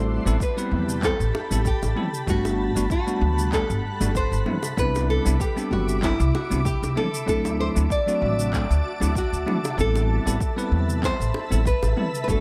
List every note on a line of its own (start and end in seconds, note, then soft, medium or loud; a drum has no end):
0.00 0.17 A1 medium
0.00 0.22 G3 medium
0.00 0.22 A3 medium
0.00 0.22 C4 medium
0.00 0.22 E4 medium
0.00 2.26 G4 medium
0.00 0.22 A4 loud
0.00 0.42 C5 loud
0.00 4.43 A5 medium
0.00 7.24 B5 medium
0.26 0.36 A1 medium
0.26 0.35 G3 medium
0.26 0.35 B3 medium
0.26 0.35 C4 medium
0.26 0.35 E4 medium
0.26 0.35 A4 medium
0.26 shaker medium
0.40 1.04 B4 medium
0.40 kick loud
0.40 shaker soft
0.57 0.99 G3 medium
0.57 0.99 B3 medium
0.57 1.00 C4 medium
0.57 1.00 E4 medium
0.57 1.00 B4 loud
0.57 shaker soft
0.71 1.11 E2 medium
0.71 mid tom medium
0.89 shaker medium
1.02 1.13 G3 medium
1.02 1.13 B3 medium
1.02 1.13 C4 medium
1.02 1.14 E4 medium
1.02 1.62 A4 medium
1.02 1.14 C5 medium
1.02 kick loud
1.02 clap medium
1.02 shaker medium
1.20 1.30 A1 loud
1.20 shaker soft
1.35 high bongo medium
1.50 1.71 A1 medium
1.50 1.60 G3 medium
1.50 1.60 B3 medium
1.50 1.60 C4 medium
1.50 1.60 E4 medium
1.50 1.60 A4 medium
1.50 shaker medium
1.65 2.29 G4 medium
1.65 kick loud
1.65 shaker medium
1.83 1.92 A1 medium
1.83 high bongo medium
1.83 shaker soft
1.96 2.07 G3 medium
1.96 2.07 B3 medium
1.96 2.07 C4 medium
1.96 2.07 E4 medium
1.96 2.07 A4 medium
1.96 mid tom medium
2.14 shaker medium
2.27 2.67 G1 loud
2.27 2.72 G3 medium
2.27 4.45 G3 medium
2.27 2.72 A3 medium
2.27 2.72 B3 medium
2.27 2.72 D4 medium
2.27 2.72 F#4 loud
2.27 2.87 F#4 medium
2.27 4.44 F#5 medium
2.27 kick loud
2.27 shaker soft
2.45 high bongo medium
2.45 shaker soft
2.75 2.86 G1 medium
2.75 2.84 G3 medium
2.75 2.85 A3 medium
2.75 2.85 B3 medium
2.75 2.85 D4 medium
2.75 2.85 F#4 loud
2.75 shaker medium
2.90 3.53 F#4 medium
2.90 kick loud
2.90 shaker medium
3.06 3.49 G3 medium
3.06 3.49 A3 medium
3.06 3.49 B3 medium
3.06 3.50 D4 medium
3.06 3.50 F#4 loud
3.06 shaker soft
3.21 3.61 D2 medium
3.21 mid tom medium
3.39 shaker medium
3.52 3.63 G3 medium
3.52 3.63 A3 medium
3.52 3.63 B3 medium
3.52 3.63 D4 medium
3.52 3.64 A4 medium
3.52 4.12 A4 loud
3.52 kick loud
3.52 clap medium
3.52 shaker medium
3.70 3.79 G1 loud
3.70 shaker soft
4.00 4.21 G1 medium
4.00 4.09 G3 medium
4.00 4.10 A3 medium
4.00 4.10 B3 medium
4.00 4.10 D4 medium
4.00 4.10 F#4 medium
4.00 high bongo medium
4.00 shaker medium
4.15 4.75 C5 medium
4.15 kick loud
4.15 shaker medium
4.32 4.42 G1 medium
4.32 shaker soft
4.46 4.57 G3 medium
4.46 4.57 B3 medium
4.46 4.57 C4 medium
4.46 4.57 D4 medium
4.46 4.57 E4 medium
4.46 9.74 E5 medium
4.46 7.25 D6 medium
4.46 mid tom medium
4.46 high bongo soft
4.63 high bongo medium
4.63 shaker medium
4.77 5.17 C2 medium
4.77 5.22 G3 medium
4.77 5.22 B3 medium
4.77 5.22 C4 medium
4.77 5.22 D4 medium
4.77 5.22 E4 medium
4.77 5.08 B4 loud
4.77 kick medium
4.77 shaker medium
4.95 high bongo medium
4.95 shaker soft
5.10 5.42 A4 medium
5.25 5.36 C2 medium
5.25 5.34 G3 medium
5.25 5.34 B3 medium
5.25 5.35 C4 medium
5.25 5.35 D4 medium
5.25 5.35 E4 medium
5.25 shaker medium
5.40 5.70 G4 medium
5.40 kick loud
5.40 shaker medium
5.56 5.99 G3 medium
5.56 5.99 B3 medium
5.56 5.99 C4 medium
5.56 6.00 D4 medium
5.56 6.00 G4 loud
5.56 shaker soft
5.71 6.11 G1 medium
5.71 6.04 F#4 medium
5.71 mid tom medium
5.89 shaker medium
6.01 6.13 G3 medium
6.01 6.13 B3 medium
6.01 6.13 C4 medium
6.01 6.13 D4 medium
6.01 6.36 E4 loud
6.01 6.14 A4 medium
6.01 kick loud
6.01 clap medium
6.01 shaker medium
6.20 6.29 C2 loud
6.20 shaker soft
6.35 6.66 F#4 medium
6.35 high bongo medium
6.50 6.71 C2 medium
6.50 6.59 G3 medium
6.50 6.60 B3 medium
6.50 6.60 C4 medium
6.50 6.60 D4 medium
6.50 6.60 E4 medium
6.50 shaker medium
6.65 6.98 G4 medium
6.65 kick loud
6.65 shaker medium
6.83 6.92 C2 medium
6.83 high bongo medium
6.83 shaker soft
6.96 7.07 G3 medium
6.96 7.07 B3 medium
6.96 7.07 C4 medium
6.96 7.07 D4 medium
6.96 7.07 E4 medium
6.96 7.28 A4 loud
6.96 mid tom medium
7.14 shaker medium
7.26 7.67 D2 medium
7.26 7.71 F#3 medium
7.26 7.71 A3 medium
7.26 7.72 C4 medium
7.26 7.72 D4 medium
7.26 7.72 E4 loud
7.26 9.75 F#4 medium
7.26 7.60 A4 loud
7.26 12.24 A5 medium
7.26 9.76 D6 medium
7.26 kick loud
7.26 shaker medium
7.45 high bongo medium
7.45 shaker soft
7.60 7.69 C5 loud
7.75 7.86 D2 medium
7.75 7.84 F#3 medium
7.75 7.85 A3 medium
7.75 7.85 C4 medium
7.75 7.85 D4 medium
7.75 7.85 E4 loud
7.75 shaker medium
7.90 8.50 D5 medium
7.90 kick loud
7.90 shaker medium
8.06 8.49 F#3 medium
8.06 8.49 A3 medium
8.06 8.50 C4 medium
8.06 8.50 D4 medium
8.06 8.50 F#4 medium
8.06 shaker soft
8.22 8.61 A1 medium
8.22 mid tom medium
8.39 shaker medium
8.52 8.63 F#3 medium
8.52 8.63 A3 medium
8.52 8.63 C4 medium
8.52 8.64 D4 medium
8.52 8.64 A4 medium
8.52 kick loud
8.52 clap medium
8.52 shaker medium
8.70 8.80 D2 loud
8.70 shaker soft
9.00 9.21 D2 medium
9.00 9.09 F#3 medium
9.00 9.10 A3 medium
9.00 9.10 C4 medium
9.00 9.10 D4 medium
9.00 9.10 E4 medium
9.00 high bongo soft
9.00 shaker medium
9.15 9.75 F#4 medium
9.15 kick loud
9.15 shaker medium
9.33 9.42 D2 medium
9.33 shaker soft
9.46 9.57 F#3 medium
9.46 9.57 A3 medium
9.46 9.57 C4 medium
9.46 9.57 D4 medium
9.46 9.57 E4 medium
9.46 mid tom medium
9.46 high bongo soft
9.65 high bongo medium
9.65 shaker medium
9.77 10.17 A1 medium
9.77 10.22 G3 medium
9.77 10.22 B3 medium
9.77 10.22 C4 medium
9.77 10.22 E4 medium
9.77 12.25 A4 medium
9.77 10.22 A4 loud
9.77 11.00 A4 loud
9.77 12.40 E5 medium
9.77 12.40 B5 medium
9.77 kick loud
9.77 shaker soft
9.95 high bongo medium
9.95 shaker soft
10.26 10.36 A1 medium
10.26 10.35 G3 medium
10.26 10.35 B3 medium
10.26 10.35 C4 medium
10.26 10.35 E4 medium
10.26 10.35 A4 medium
10.26 shaker medium
10.40 kick loud
10.40 shaker soft
10.56 10.99 G3 medium
10.56 10.99 B3 medium
10.56 10.99 C4 medium
10.56 11.00 E4 medium
10.56 11.00 B4 loud
10.56 shaker soft
10.72 11.11 E2 medium
10.72 mid tom medium
10.90 shaker medium
11.02 11.13 G3 medium
11.02 11.13 B3 medium
11.02 11.13 C4 medium
11.02 11.13 E4 medium
11.02 11.14 C5 loud
11.02 11.67 C5 loud
11.02 kick loud
11.02 clap medium
11.02 shaker medium
11.20 11.30 A1 loud
11.20 shaker soft
11.34 high bongo medium
11.50 11.71 A1 medium
11.50 11.59 G3 medium
11.50 11.60 B3 medium
11.50 11.60 C4 medium
11.50 11.60 E4 medium
11.50 11.60 A4 medium
11.50 shaker medium
11.66 12.19 B4 loud
11.66 kick loud
11.66 shaker medium
11.83 11.92 A1 medium
11.83 high bongo medium
11.83 shaker soft
11.96 12.07 G3 medium
11.96 12.07 B3 medium
11.96 12.07 C4 medium
11.96 12.07 E4 medium
11.96 12.08 A4 medium
11.96 mid tom medium
12.15 shaker medium
12.24 12.40 G3 medium
12.24 12.40 A4 medium
12.24 12.29 B4 medium
12.24 12.40 F#5 medium
12.28 12.40 G1 loud
12.28 12.40 A3 medium
12.28 12.40 B3 medium
12.28 12.40 D4 medium
12.28 12.40 F#4 loud
12.28 12.40 A4 medium
12.28 kick medium
12.28 shaker soft